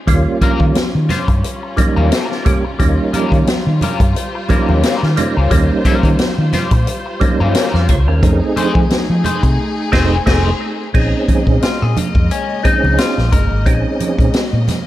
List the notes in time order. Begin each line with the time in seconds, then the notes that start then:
0.07 D#2 G3 A#3 C#4 F4, kick, closed hi-hat, low conga
0.41 G3 C#4 F4 A#4, muted fingered electric bass stroke, kick, closed hi-hat, muted conga, high conga
0.60 D#3, kick
0.75 muted clean electric guitar stroke, muted fingered electric bass stroke, snare, closed hi-hat, muted conga, high conga
0.95 D#3
1.09 G3 C#4 F4 C5, snare, closed hi-hat, high conga, low conga
1.28 G2, muted clean electric guitar stroke, kick, closed hi-hat
1.44 muted clean electric guitar stroke, closed hi-hat
1.63 muted clean electric guitar stroke
1.77 G3 A#3 C#4 D#4, muted fingered electric bass stroke, kick, closed hi-hat, muted conga, high conga
1.96 D#2 G3 C#4 F4 A#4, high conga
2.11 F#3 C4 E4 A4, snare, closed hi-hat, muted conga
2.24 G3 C#4 F4 A#4
2.31 snare
2.45 G3 A#3 C#4 G4, muted clean electric guitar stroke, kick, closed hi-hat, muted conga, low conga
2.65 muted clean electric guitar stroke
2.79 D#2 G3 A#3 C#4 D#4, kick, closed hi-hat, low conga
3.13 G3 C#4 F4 A#4, muted fingered electric bass stroke, closed hi-hat, muted conga, high conga
3.32 D#3, kick, closed hi-hat
3.47 muted fingered electric bass stroke, muted clean electric guitar stroke, snare, closed hi-hat, muted conga, high conga
3.67 D#3
3.81 G3 C#4 F4 A#4, closed hi-hat, muted conga, high conga, low conga
4.00 G2, muted clean electric guitar stroke, kick, closed hi-hat
4.15 C5, muted clean electric guitar stroke, closed hi-hat, muted conga
4.35 muted clean electric guitar stroke
4.49 G3 A#3 C#4 D#4 F4 A#4, muted fingered electric bass stroke, kick, closed hi-hat, muted conga, high conga
4.69 D#2 G3 C#4 F4 A#4, high conga
4.83 G3 C#4 F4 A#4, snare, closed hi-hat
5.03 D#3, snare
5.16 G3 A#3 C#4 D#4, muted clean electric guitar stroke, closed hi-hat, muted conga, low conga
5.37 C#2 G3 C#4 F4 A#4
5.50 D#2 G3 A#3 C#4 D#4, kick, closed hi-hat, muted conga, low conga
5.85 G3 C#4 F4 A#4, muted fingered electric bass stroke, kick, closed hi-hat, muted conga, high conga
6.03 D#3, kick, closed hi-hat
6.19 muted clean electric guitar stroke, muted fingered electric bass stroke, snare, closed hi-hat, muted conga, high conga
6.38 D#3
6.53 G3 C#4 F4 C5, snare, closed hi-hat, high conga, low conga
6.71 A#2, muted clean electric guitar stroke, kick, closed hi-hat
6.87 muted clean electric guitar stroke, closed hi-hat, muted conga
7.06 muted clean electric guitar stroke
7.20 G3 A#3 C#4 D#4, muted fingered electric bass stroke, kick, closed hi-hat, muted conga, high conga
7.40 G2 G3 C#4 F4 A#4, high conga
7.55 G3 C#4 F4 A#4 G5, snare, closed hi-hat, muted conga
7.74 F2 F5, snare
7.89 C#2 F4 C#5, muted clean electric guitar stroke, kick, closed hi-hat, low conga
8.07 D#2 C#4 A#4, muted clean electric guitar stroke
8.22 F2 A3 C4 D#4 G#4, kick, closed hi-hat, muted conga, low conga
8.56 A3 D#4 G#4 C5, muted fingered electric bass stroke, closed hi-hat, muted conga, high conga
8.75 F3, kick
8.90 muted clean electric guitar stroke, muted fingered electric bass stroke, snare, closed hi-hat, muted conga, high conga
9.10 F3
9.24 A3 D#4 G#4 C5, closed hi-hat, high conga, low conga
9.43 C3, muted clean electric guitar stroke, kick, closed hi-hat
9.92 F1 A3 C4 D#4 G#4 C5, kick, snare, crash
10.26 F1 A3 C4 D#4 G#4 C5, kick, snare, crash
10.94 A#1 C#3 G#3 A#3 C4 C#4 D#4 G#4 D#5, kick, crash, muted conga
11.28 muted fingered electric bass stroke, kick, closed hi-hat, muted conga, high conga
11.47 A#2, kick
11.62 F4, muted fingered electric bass stroke, snare, closed hi-hat, muted conga
11.82 A#2 G#4
11.97 F4, closed hi-hat, muted conga, high conga, low conga
12.15 F2, kick
12.31 C#4, closed hi-hat
12.63 C4 C#4 D#4 G#4, muted fingered electric bass stroke, kick, closed hi-hat, high conga
12.84 C#2, high conga
12.98 F4, snare, closed hi-hat
13.18 A#1, snare
13.32 G1 A#4, kick, closed hi-hat, muted conga, low conga
13.51 G#1
13.66 A#1 C4 C#4 D#4 G4, kick, closed hi-hat, muted conga
13.73 G#4
14.00 muted fingered electric bass stroke, closed hi-hat, muted conga, high conga
14.18 A#2, kick, closed hi-hat
14.34 muted fingered electric bass stroke, snare, closed hi-hat, muted conga
14.53 A#2
14.68 snare, closed hi-hat, high conga, low conga